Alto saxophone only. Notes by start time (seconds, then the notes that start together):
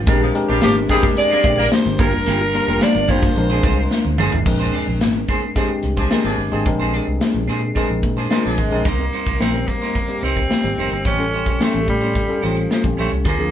0.63 G4
0.91 G#4
1.18 D5
1.73 C5
2.00 A#4
2.83 D5
3.11 C5
8.32 F3
8.59 G#3
8.87 A#3
9.42 C4
9.69 A#3
10.24 C4
11.06 C#4
11.62 A3
11.89 G3
12.45 F3
12.72 F3
13.00 A3
13.28 A#3